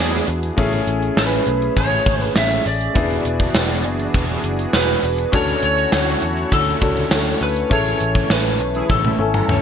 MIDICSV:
0, 0, Header, 1, 7, 480
1, 0, Start_track
1, 0, Key_signature, 3, "major"
1, 0, Tempo, 594059
1, 468, Time_signature, 4, 2, 24, 8
1, 7771, End_track
2, 0, Start_track
2, 0, Title_t, "Lead electric guitar"
2, 0, Program_c, 0, 29
2, 0, Note_on_c, 0, 68, 73
2, 200, Note_off_c, 0, 68, 0
2, 958, Note_on_c, 0, 71, 85
2, 1441, Note_on_c, 0, 73, 94
2, 1447, Note_off_c, 0, 71, 0
2, 1780, Note_off_c, 0, 73, 0
2, 1780, Note_on_c, 0, 71, 94
2, 1882, Note_off_c, 0, 71, 0
2, 1919, Note_on_c, 0, 76, 96
2, 2155, Note_off_c, 0, 76, 0
2, 2158, Note_on_c, 0, 74, 91
2, 3561, Note_off_c, 0, 74, 0
2, 3839, Note_on_c, 0, 71, 90
2, 4318, Note_on_c, 0, 73, 109
2, 4328, Note_off_c, 0, 71, 0
2, 4548, Note_off_c, 0, 73, 0
2, 4558, Note_on_c, 0, 73, 114
2, 5280, Note_on_c, 0, 69, 90
2, 5294, Note_off_c, 0, 73, 0
2, 5962, Note_off_c, 0, 69, 0
2, 6000, Note_on_c, 0, 71, 86
2, 6241, Note_off_c, 0, 71, 0
2, 6243, Note_on_c, 0, 73, 103
2, 6720, Note_on_c, 0, 71, 96
2, 6729, Note_off_c, 0, 73, 0
2, 7194, Note_off_c, 0, 71, 0
2, 7197, Note_on_c, 0, 69, 69
2, 7771, Note_off_c, 0, 69, 0
2, 7771, End_track
3, 0, Start_track
3, 0, Title_t, "Analog polysynth"
3, 0, Program_c, 1, 90
3, 0, Note_on_c, 1, 62, 97
3, 0, Note_on_c, 1, 64, 93
3, 0, Note_on_c, 1, 68, 105
3, 191, Note_off_c, 1, 62, 0
3, 191, Note_off_c, 1, 64, 0
3, 191, Note_off_c, 1, 68, 0
3, 7070, Note_on_c, 1, 61, 79
3, 7070, Note_on_c, 1, 64, 87
3, 7070, Note_on_c, 1, 68, 96
3, 7171, Note_off_c, 1, 61, 0
3, 7171, Note_off_c, 1, 64, 0
3, 7171, Note_off_c, 1, 68, 0
3, 7308, Note_on_c, 1, 57, 83
3, 7308, Note_on_c, 1, 61, 82
3, 7308, Note_on_c, 1, 64, 93
3, 7410, Note_off_c, 1, 57, 0
3, 7410, Note_off_c, 1, 61, 0
3, 7410, Note_off_c, 1, 64, 0
3, 7667, Note_on_c, 1, 61, 89
3, 7667, Note_on_c, 1, 73, 106
3, 7668, Note_on_c, 1, 69, 88
3, 7771, Note_off_c, 1, 61, 0
3, 7771, Note_off_c, 1, 69, 0
3, 7771, Note_off_c, 1, 73, 0
3, 7771, End_track
4, 0, Start_track
4, 0, Title_t, "Grand piano"
4, 0, Program_c, 2, 0
4, 0, Control_c, 2, 64, 127
4, 0, Note_on_c, 2, 59, 67
4, 0, Note_on_c, 2, 62, 60
4, 0, Note_on_c, 2, 64, 58
4, 0, Note_on_c, 2, 68, 70
4, 430, Note_off_c, 2, 59, 0
4, 434, Note_off_c, 2, 62, 0
4, 437, Note_off_c, 2, 64, 0
4, 439, Note_off_c, 2, 68, 0
4, 457, Note_on_c, 2, 57, 77
4, 465, Note_on_c, 2, 61, 72
4, 472, Note_on_c, 2, 64, 70
4, 478, Control_c, 2, 64, 0
4, 478, Note_on_c, 2, 68, 85
4, 596, Control_c, 2, 64, 127
4, 2350, Note_off_c, 2, 57, 0
4, 2354, Note_off_c, 2, 61, 0
4, 2357, Note_off_c, 2, 64, 0
4, 2361, Note_off_c, 2, 68, 0
4, 2377, Note_on_c, 2, 59, 61
4, 2386, Note_on_c, 2, 62, 58
4, 2391, Note_on_c, 2, 64, 60
4, 2398, Note_on_c, 2, 68, 75
4, 2399, Control_c, 2, 64, 0
4, 2537, Control_c, 2, 64, 127
4, 4270, Note_off_c, 2, 59, 0
4, 4275, Note_off_c, 2, 62, 0
4, 4277, Note_off_c, 2, 64, 0
4, 4280, Note_off_c, 2, 68, 0
4, 4299, Note_on_c, 2, 61, 66
4, 4305, Note_on_c, 2, 62, 58
4, 4312, Note_on_c, 2, 66, 59
4, 4317, Control_c, 2, 64, 0
4, 4319, Note_on_c, 2, 69, 69
4, 4445, Control_c, 2, 64, 127
4, 5480, Note_off_c, 2, 61, 0
4, 5482, Note_off_c, 2, 62, 0
4, 5486, Note_off_c, 2, 66, 0
4, 5489, Note_off_c, 2, 69, 0
4, 5505, Note_on_c, 2, 61, 51
4, 5507, Note_on_c, 2, 62, 47
4, 5510, Note_on_c, 2, 66, 45
4, 5514, Note_on_c, 2, 69, 59
4, 6207, Note_off_c, 2, 61, 0
4, 6219, Note_on_c, 2, 61, 63
4, 6226, Note_off_c, 2, 69, 0
4, 6226, Note_on_c, 2, 64, 63
4, 6228, Note_off_c, 2, 62, 0
4, 6229, Note_off_c, 2, 66, 0
4, 6231, Note_on_c, 2, 68, 64
4, 6237, Control_c, 2, 64, 0
4, 6238, Note_on_c, 2, 69, 76
4, 6401, Control_c, 2, 64, 127
4, 7399, Note_off_c, 2, 61, 0
4, 7403, Note_off_c, 2, 64, 0
4, 7405, Note_off_c, 2, 68, 0
4, 7409, Note_off_c, 2, 69, 0
4, 7423, Note_on_c, 2, 61, 50
4, 7426, Note_on_c, 2, 64, 46
4, 7429, Note_on_c, 2, 80, 46
4, 7433, Note_on_c, 2, 69, 57
4, 7771, Note_off_c, 2, 61, 0
4, 7771, Note_off_c, 2, 64, 0
4, 7771, Note_off_c, 2, 69, 0
4, 7771, Note_off_c, 2, 80, 0
4, 7771, End_track
5, 0, Start_track
5, 0, Title_t, "Analog synth pad"
5, 0, Program_c, 3, 89
5, 0, Note_on_c, 3, 52, 82
5, 0, Note_on_c, 3, 59, 75
5, 0, Note_on_c, 3, 62, 76
5, 0, Note_on_c, 3, 66, 72
5, 0, Note_on_c, 3, 68, 87
5, 437, Note_off_c, 3, 66, 0
5, 450, Note_off_c, 3, 52, 0
5, 450, Note_off_c, 3, 59, 0
5, 451, Note_off_c, 3, 62, 0
5, 451, Note_off_c, 3, 68, 0
5, 467, Note_on_c, 3, 68, 81
5, 468, Note_on_c, 3, 57, 77
5, 468, Note_on_c, 3, 61, 89
5, 2368, Note_off_c, 3, 68, 0
5, 2369, Note_off_c, 3, 57, 0
5, 2369, Note_off_c, 3, 61, 0
5, 2390, Note_on_c, 3, 52, 85
5, 2390, Note_on_c, 3, 68, 90
5, 2391, Note_on_c, 3, 66, 73
5, 2392, Note_on_c, 3, 62, 76
5, 2393, Note_on_c, 3, 59, 74
5, 4290, Note_off_c, 3, 52, 0
5, 4290, Note_off_c, 3, 66, 0
5, 4290, Note_off_c, 3, 68, 0
5, 4291, Note_off_c, 3, 59, 0
5, 4291, Note_off_c, 3, 62, 0
5, 4307, Note_on_c, 3, 50, 82
5, 4307, Note_on_c, 3, 73, 77
5, 4308, Note_on_c, 3, 66, 89
5, 4309, Note_on_c, 3, 64, 75
5, 4310, Note_on_c, 3, 57, 73
5, 6208, Note_off_c, 3, 50, 0
5, 6209, Note_off_c, 3, 64, 0
5, 6209, Note_off_c, 3, 66, 0
5, 6226, Note_on_c, 3, 52, 83
5, 7771, Note_off_c, 3, 52, 0
5, 7771, Note_off_c, 3, 57, 0
5, 7771, Note_off_c, 3, 73, 0
5, 7771, End_track
6, 0, Start_track
6, 0, Title_t, "Picked electric bass"
6, 0, Program_c, 4, 34
6, 0, Note_on_c, 4, 40, 96
6, 160, Note_off_c, 4, 40, 0
6, 226, Note_on_c, 4, 40, 93
6, 400, Note_off_c, 4, 40, 0
6, 467, Note_on_c, 4, 33, 105
6, 640, Note_off_c, 4, 33, 0
6, 705, Note_on_c, 4, 33, 89
6, 879, Note_off_c, 4, 33, 0
6, 945, Note_on_c, 4, 33, 107
6, 1119, Note_off_c, 4, 33, 0
6, 1185, Note_on_c, 4, 35, 85
6, 1359, Note_off_c, 4, 35, 0
6, 1428, Note_on_c, 4, 33, 109
6, 1601, Note_off_c, 4, 33, 0
6, 1667, Note_on_c, 4, 32, 80
6, 1840, Note_off_c, 4, 32, 0
6, 1909, Note_on_c, 4, 33, 105
6, 2081, Note_off_c, 4, 33, 0
6, 2148, Note_on_c, 4, 33, 96
6, 2321, Note_off_c, 4, 33, 0
6, 2388, Note_on_c, 4, 28, 105
6, 2561, Note_off_c, 4, 28, 0
6, 2627, Note_on_c, 4, 28, 94
6, 2800, Note_off_c, 4, 28, 0
6, 2865, Note_on_c, 4, 28, 99
6, 3108, Note_off_c, 4, 28, 0
6, 3108, Note_on_c, 4, 30, 80
6, 3281, Note_off_c, 4, 30, 0
6, 3348, Note_on_c, 4, 28, 102
6, 3521, Note_off_c, 4, 28, 0
6, 3588, Note_on_c, 4, 30, 75
6, 3761, Note_off_c, 4, 30, 0
6, 3829, Note_on_c, 4, 28, 99
6, 4001, Note_off_c, 4, 28, 0
6, 4066, Note_on_c, 4, 28, 103
6, 4240, Note_off_c, 4, 28, 0
6, 4307, Note_on_c, 4, 38, 103
6, 4480, Note_off_c, 4, 38, 0
6, 4548, Note_on_c, 4, 38, 96
6, 4721, Note_off_c, 4, 38, 0
6, 4790, Note_on_c, 4, 38, 107
6, 4962, Note_off_c, 4, 38, 0
6, 5030, Note_on_c, 4, 40, 86
6, 5202, Note_off_c, 4, 40, 0
6, 5269, Note_on_c, 4, 38, 108
6, 5441, Note_off_c, 4, 38, 0
6, 5508, Note_on_c, 4, 37, 89
6, 5681, Note_off_c, 4, 37, 0
6, 5747, Note_on_c, 4, 38, 101
6, 5920, Note_off_c, 4, 38, 0
6, 5989, Note_on_c, 4, 38, 98
6, 6162, Note_off_c, 4, 38, 0
6, 6230, Note_on_c, 4, 33, 107
6, 6402, Note_off_c, 4, 33, 0
6, 6469, Note_on_c, 4, 33, 98
6, 6642, Note_off_c, 4, 33, 0
6, 6709, Note_on_c, 4, 33, 108
6, 6946, Note_off_c, 4, 33, 0
6, 6946, Note_on_c, 4, 35, 85
6, 7120, Note_off_c, 4, 35, 0
6, 7189, Note_on_c, 4, 33, 94
6, 7361, Note_off_c, 4, 33, 0
6, 7425, Note_on_c, 4, 32, 77
6, 7599, Note_off_c, 4, 32, 0
6, 7663, Note_on_c, 4, 33, 96
6, 7771, Note_off_c, 4, 33, 0
6, 7771, End_track
7, 0, Start_track
7, 0, Title_t, "Drums"
7, 105, Note_on_c, 9, 42, 53
7, 186, Note_off_c, 9, 42, 0
7, 225, Note_on_c, 9, 42, 72
7, 306, Note_off_c, 9, 42, 0
7, 348, Note_on_c, 9, 42, 54
7, 429, Note_off_c, 9, 42, 0
7, 467, Note_on_c, 9, 36, 102
7, 467, Note_on_c, 9, 42, 94
7, 547, Note_off_c, 9, 42, 0
7, 548, Note_off_c, 9, 36, 0
7, 588, Note_on_c, 9, 42, 54
7, 669, Note_off_c, 9, 42, 0
7, 708, Note_on_c, 9, 42, 83
7, 788, Note_off_c, 9, 42, 0
7, 827, Note_on_c, 9, 42, 52
7, 908, Note_off_c, 9, 42, 0
7, 946, Note_on_c, 9, 54, 67
7, 947, Note_on_c, 9, 38, 108
7, 1027, Note_off_c, 9, 54, 0
7, 1028, Note_off_c, 9, 38, 0
7, 1066, Note_on_c, 9, 42, 50
7, 1147, Note_off_c, 9, 42, 0
7, 1186, Note_on_c, 9, 42, 66
7, 1267, Note_off_c, 9, 42, 0
7, 1309, Note_on_c, 9, 42, 41
7, 1390, Note_off_c, 9, 42, 0
7, 1427, Note_on_c, 9, 36, 82
7, 1427, Note_on_c, 9, 42, 93
7, 1508, Note_off_c, 9, 36, 0
7, 1508, Note_off_c, 9, 42, 0
7, 1545, Note_on_c, 9, 42, 39
7, 1626, Note_off_c, 9, 42, 0
7, 1666, Note_on_c, 9, 42, 79
7, 1667, Note_on_c, 9, 36, 91
7, 1746, Note_off_c, 9, 42, 0
7, 1748, Note_off_c, 9, 36, 0
7, 1787, Note_on_c, 9, 42, 60
7, 1868, Note_off_c, 9, 42, 0
7, 1903, Note_on_c, 9, 38, 106
7, 1905, Note_on_c, 9, 54, 64
7, 1984, Note_off_c, 9, 38, 0
7, 1986, Note_off_c, 9, 54, 0
7, 2025, Note_on_c, 9, 42, 56
7, 2106, Note_off_c, 9, 42, 0
7, 2147, Note_on_c, 9, 46, 75
7, 2228, Note_off_c, 9, 46, 0
7, 2268, Note_on_c, 9, 42, 56
7, 2349, Note_off_c, 9, 42, 0
7, 2386, Note_on_c, 9, 42, 93
7, 2388, Note_on_c, 9, 36, 114
7, 2467, Note_off_c, 9, 42, 0
7, 2469, Note_off_c, 9, 36, 0
7, 2507, Note_on_c, 9, 42, 53
7, 2588, Note_off_c, 9, 42, 0
7, 2627, Note_on_c, 9, 42, 76
7, 2708, Note_off_c, 9, 42, 0
7, 2745, Note_on_c, 9, 42, 48
7, 2746, Note_on_c, 9, 36, 88
7, 2826, Note_off_c, 9, 36, 0
7, 2826, Note_off_c, 9, 42, 0
7, 2865, Note_on_c, 9, 38, 117
7, 2865, Note_on_c, 9, 54, 65
7, 2945, Note_off_c, 9, 54, 0
7, 2946, Note_off_c, 9, 38, 0
7, 2986, Note_on_c, 9, 42, 52
7, 3066, Note_off_c, 9, 42, 0
7, 3105, Note_on_c, 9, 42, 69
7, 3186, Note_off_c, 9, 42, 0
7, 3228, Note_on_c, 9, 42, 43
7, 3309, Note_off_c, 9, 42, 0
7, 3348, Note_on_c, 9, 36, 87
7, 3348, Note_on_c, 9, 42, 94
7, 3428, Note_off_c, 9, 42, 0
7, 3429, Note_off_c, 9, 36, 0
7, 3466, Note_on_c, 9, 42, 41
7, 3546, Note_off_c, 9, 42, 0
7, 3587, Note_on_c, 9, 42, 79
7, 3667, Note_off_c, 9, 42, 0
7, 3709, Note_on_c, 9, 42, 58
7, 3790, Note_off_c, 9, 42, 0
7, 3825, Note_on_c, 9, 38, 100
7, 3826, Note_on_c, 9, 54, 66
7, 3905, Note_off_c, 9, 38, 0
7, 3907, Note_off_c, 9, 54, 0
7, 3948, Note_on_c, 9, 42, 52
7, 4029, Note_off_c, 9, 42, 0
7, 4067, Note_on_c, 9, 46, 75
7, 4148, Note_off_c, 9, 46, 0
7, 4188, Note_on_c, 9, 42, 52
7, 4269, Note_off_c, 9, 42, 0
7, 4307, Note_on_c, 9, 42, 96
7, 4309, Note_on_c, 9, 36, 112
7, 4387, Note_off_c, 9, 42, 0
7, 4389, Note_off_c, 9, 36, 0
7, 4428, Note_on_c, 9, 42, 59
7, 4509, Note_off_c, 9, 42, 0
7, 4546, Note_on_c, 9, 42, 79
7, 4627, Note_off_c, 9, 42, 0
7, 4667, Note_on_c, 9, 42, 53
7, 4747, Note_off_c, 9, 42, 0
7, 4785, Note_on_c, 9, 54, 70
7, 4786, Note_on_c, 9, 38, 112
7, 4866, Note_off_c, 9, 54, 0
7, 4867, Note_off_c, 9, 38, 0
7, 4906, Note_on_c, 9, 42, 49
7, 4987, Note_off_c, 9, 42, 0
7, 5026, Note_on_c, 9, 42, 71
7, 5107, Note_off_c, 9, 42, 0
7, 5148, Note_on_c, 9, 42, 46
7, 5229, Note_off_c, 9, 42, 0
7, 5267, Note_on_c, 9, 42, 94
7, 5269, Note_on_c, 9, 36, 84
7, 5348, Note_off_c, 9, 42, 0
7, 5349, Note_off_c, 9, 36, 0
7, 5386, Note_on_c, 9, 42, 42
7, 5467, Note_off_c, 9, 42, 0
7, 5506, Note_on_c, 9, 42, 76
7, 5508, Note_on_c, 9, 36, 92
7, 5587, Note_off_c, 9, 42, 0
7, 5589, Note_off_c, 9, 36, 0
7, 5630, Note_on_c, 9, 42, 59
7, 5710, Note_off_c, 9, 42, 0
7, 5746, Note_on_c, 9, 38, 104
7, 5748, Note_on_c, 9, 54, 68
7, 5827, Note_off_c, 9, 38, 0
7, 5828, Note_off_c, 9, 54, 0
7, 5869, Note_on_c, 9, 42, 56
7, 5949, Note_off_c, 9, 42, 0
7, 5989, Note_on_c, 9, 46, 75
7, 6070, Note_off_c, 9, 46, 0
7, 6111, Note_on_c, 9, 42, 52
7, 6192, Note_off_c, 9, 42, 0
7, 6228, Note_on_c, 9, 42, 89
7, 6229, Note_on_c, 9, 36, 109
7, 6309, Note_off_c, 9, 42, 0
7, 6310, Note_off_c, 9, 36, 0
7, 6348, Note_on_c, 9, 42, 58
7, 6429, Note_off_c, 9, 42, 0
7, 6467, Note_on_c, 9, 42, 82
7, 6548, Note_off_c, 9, 42, 0
7, 6586, Note_on_c, 9, 36, 84
7, 6588, Note_on_c, 9, 42, 53
7, 6667, Note_off_c, 9, 36, 0
7, 6668, Note_off_c, 9, 42, 0
7, 6707, Note_on_c, 9, 38, 113
7, 6707, Note_on_c, 9, 54, 67
7, 6788, Note_off_c, 9, 38, 0
7, 6788, Note_off_c, 9, 54, 0
7, 6830, Note_on_c, 9, 42, 49
7, 6910, Note_off_c, 9, 42, 0
7, 6948, Note_on_c, 9, 42, 69
7, 7028, Note_off_c, 9, 42, 0
7, 7068, Note_on_c, 9, 42, 42
7, 7149, Note_off_c, 9, 42, 0
7, 7188, Note_on_c, 9, 36, 89
7, 7188, Note_on_c, 9, 48, 54
7, 7269, Note_off_c, 9, 36, 0
7, 7269, Note_off_c, 9, 48, 0
7, 7309, Note_on_c, 9, 48, 55
7, 7390, Note_off_c, 9, 48, 0
7, 7548, Note_on_c, 9, 47, 68
7, 7628, Note_off_c, 9, 47, 0
7, 7670, Note_on_c, 9, 45, 82
7, 7751, Note_off_c, 9, 45, 0
7, 7771, End_track
0, 0, End_of_file